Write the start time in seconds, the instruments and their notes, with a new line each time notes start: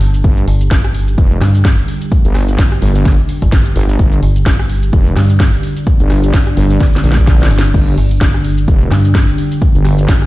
Already playing: fm bass G1, ambient pad D4 G4 A5
0.01 open hi-hat
0.14 closed hi-hat, shaker
0.24 wobble bass G1, ambient pad G5, kick, shaker
0.38 closed hi-hat, shaker
0.48 fm bass G1, open hi-hat
0.61 closed hi-hat, shaker
0.71 fm bass G1, kick, snare, shaker
0.84 cross-stick, shaker
0.95 open hi-hat
1.08 closed hi-hat, shaker
1.18 wobble bass F1, kick, shaker
1.31 shaker
1.41 fm bass G2, cross-stick, snare, open hi-hat
1.55 closed hi-hat, shaker
1.65 kick, snare, shaker
1.78 closed hi-hat, shaker
1.88 open hi-hat
2.02 closed hi-hat, shaker
2.12 kick, shaker
2.25 wobble bass G1, closed hi-hat, shaker
2.35 cross-stick, open hi-hat
2.48 closed hi-hat, shaker
2.59 fm bass G1, kick, snare, shaker
2.72 cross-stick, shaker
2.82 wobble bass G1, open hi-hat
2.95 closed hi-hat, shaker
3.05 kick, snare, shaker
3.19 shaker
3.29 open hi-hat
3.42 fm bass G1, kick, closed hi-hat, shaker
3.52 kick, snare, shaker
3.66 closed hi-hat, shaker
3.76 wobble bass G1, open hi-hat
3.89 closed hi-hat, shaker
3.99 wobble bass G1, ambient pad D5, kick, shaker
4.13 closed hi-hat, shaker
4.23 fm bass G1, open hi-hat
4.36 closed hi-hat, shaker
4.46 fm bass G1, kick, snare, shaker
4.59 cross-stick, shaker
4.70 open hi-hat
4.83 closed hi-hat, shaker
4.93 wobble bass F1, kick, shaker
5.06 shaker
5.16 fm bass G2, cross-stick, snare, open hi-hat
5.30 closed hi-hat, shaker
5.40 kick, snare, shaker
5.53 closed hi-hat, shaker
5.63 open hi-hat
5.77 closed hi-hat, shaker
5.87 kick, shaker
6.00 wobble bass G1, closed hi-hat, shaker
6.10 cross-stick, open hi-hat
6.23 closed hi-hat, shaker
6.34 fm bass G1, kick, snare, shaker
6.47 cross-stick, closed hi-hat, shaker
6.57 wobble bass G1, open hi-hat
6.70 closed hi-hat, shaker
6.80 kick, snare, shaker
6.94 snare, closed hi-hat, shaker
7.04 wobble bass A#1, open hi-hat
7.12 snare
7.17 kick, closed hi-hat, shaker
7.27 kick, snare, shaker
7.41 snare, closed hi-hat, shaker
7.51 fm bass G1, open hi-hat
7.59 snare
7.64 closed hi-hat, shaker
7.74 wobble bass G1, ambient pad G5, kick, crash, shaker
7.87 closed hi-hat, shaker
7.98 fm bass G1, open hi-hat
8.11 closed hi-hat, shaker
8.21 fm bass G1, kick, snare, shaker
8.34 cross-stick, shaker
8.45 open hi-hat
8.58 closed hi-hat, shaker
8.68 wobble bass F1, kick, shaker
8.81 shaker
8.91 fm bass G2, cross-stick, snare, open hi-hat
9.05 closed hi-hat, shaker
9.15 kick, snare, shaker
9.28 closed hi-hat, shaker
9.38 open hi-hat
9.52 closed hi-hat, shaker
9.62 kick, shaker
9.75 wobble bass G1, closed hi-hat, shaker
9.85 cross-stick, open hi-hat
9.98 closed hi-hat, shaker
10.09 fm bass G1, kick, snare, shaker
10.22 cross-stick, shaker